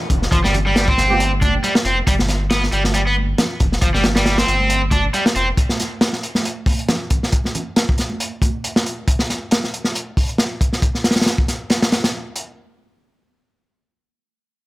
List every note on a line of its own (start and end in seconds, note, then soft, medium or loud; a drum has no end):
0.00 downlifter medium
0.10 0.27 F1 medium
0.10 kick medium
0.10 closed hi-hat medium
0.10 low conga medium
0.22 snare soft
0.31 0.94 G1 loud
0.31 0.37 F3 loud
0.31 kick loud
0.31 closed hi-hat medium
0.44 0.53 G3 loud
0.44 snare soft
0.44 high conga medium
0.54 closed hi-hat medium
0.54 low conga medium
0.67 0.87 G3 medium
0.76 snare loud
0.76 closed hi-hat medium
0.88 1.30 C4 medium
0.88 kick medium
0.97 1.59 G1 loud
0.97 snare soft
0.97 closed hi-hat medium
1.10 1.20 B3 medium
1.10 1.20 F4 medium
1.10 1.20 G4 medium
1.10 high conga medium
1.20 closed hi-hat medium
1.41 1.53 D4 medium
1.41 kick medium
1.41 closed hi-hat medium
1.41 high conga medium
1.64 1.73 G3 loud
1.64 closed hi-hat medium
1.75 snare loud
1.85 2.02 F1 medium
1.85 1.97 C4 medium
1.85 closed hi-hat medium
2.07 2.69 G1 loud
2.07 2.13 G3 loud
2.07 kick loud
2.07 closed hi-hat medium
2.19 snare soft
2.19 high conga medium
2.29 snare soft
2.29 closed hi-hat medium
2.51 2.62 B3 medium
2.51 snare loud
2.51 closed hi-hat medium
2.63 snare soft
2.72 3.34 G1 medium
2.72 2.82 G3 medium
2.72 closed hi-hat medium
2.85 snare soft
2.85 high conga medium
2.94 3.00 G3 loud
2.94 closed hi-hat medium
3.07 3.14 B3 loud
3.17 high conga medium
3.38 snare loud
3.38 closed hi-hat medium
3.38 low conga loud
3.60 3.78 F1 medium
3.60 kick loud
3.60 closed hi-hat medium
3.60 low conga medium
3.72 snare soft
3.82 4.44 G1 loud
3.82 3.88 F3 loud
3.82 kick loud
3.82 closed hi-hat medium
3.94 4.04 G3 medium
3.94 snare soft
3.94 high conga medium
4.04 snare loud
4.04 closed hi-hat medium
4.04 low conga medium
4.16 4.37 G3 medium
4.16 snare loud
4.16 closed hi-hat medium
4.26 snare loud
4.26 closed hi-hat medium
4.38 4.81 C4 loud
4.38 snare loud
4.38 closed hi-hat medium
4.47 5.10 G1 medium
4.47 snare soft
4.47 closed hi-hat medium
4.60 high conga medium
4.70 closed hi-hat medium
4.91 5.03 D4 medium
4.91 kick medium
4.91 closed hi-hat medium
4.91 high conga medium
5.14 5.23 G3 loud
5.14 closed hi-hat medium
5.26 snare loud
5.35 5.53 F1 medium
5.35 5.47 C4 medium
5.35 closed hi-hat medium
5.57 kick loud
5.57 closed hi-hat medium
5.69 snare medium
5.69 high conga medium
5.80 snare soft
5.80 closed hi-hat medium
6.01 snare loud
6.01 closed hi-hat medium
6.13 snare soft
6.23 closed hi-hat medium
6.35 snare soft
6.35 high conga medium
6.45 closed hi-hat medium
6.66 kick loud
6.66 open hi-hat medium
6.66 high conga medium
6.79 closed hi-hat soft
6.89 snare loud
6.89 closed hi-hat medium
6.89 low conga medium
7.10 kick medium
7.10 closed hi-hat medium
7.10 low conga medium
7.23 snare soft
7.32 kick medium
7.32 closed hi-hat medium
7.44 snare soft
7.44 high conga medium
7.55 closed hi-hat medium
7.55 low conga medium
7.76 snare loud
7.76 closed hi-hat medium
7.89 kick loud
7.98 snare soft
7.98 closed hi-hat medium
8.10 high conga medium
8.20 closed hi-hat medium
8.42 kick medium
8.42 closed hi-hat medium
8.42 high conga medium
8.64 closed hi-hat medium
8.76 snare loud
8.86 closed hi-hat medium
9.08 kick loud
9.08 closed hi-hat medium
9.19 snare medium
9.30 snare soft
9.30 closed hi-hat medium
9.51 snare loud
9.51 closed hi-hat medium
9.64 snare soft
9.74 closed hi-hat medium
9.85 snare soft
9.95 closed hi-hat medium
10.17 kick medium
10.17 open hi-hat medium
10.29 closed hi-hat soft
10.38 snare loud
10.38 closed hi-hat medium
10.61 kick medium
10.61 closed hi-hat medium
10.73 snare soft
10.82 kick medium
10.82 closed hi-hat medium
10.95 snare soft
11.04 snare medium
11.04 closed hi-hat medium
11.11 snare medium
11.11 closed hi-hat medium
11.16 snare medium
11.16 closed hi-hat medium
11.21 snare medium
11.21 closed hi-hat medium
11.26 snare loud
11.26 closed hi-hat medium
11.38 kick medium
11.48 snare soft
11.48 closed hi-hat medium
11.70 snare medium
11.70 closed hi-hat medium
11.82 snare loud
11.82 closed hi-hat medium
11.92 snare loud
11.92 closed hi-hat medium
12.04 snare loud
12.04 closed hi-hat medium
12.36 closed hi-hat medium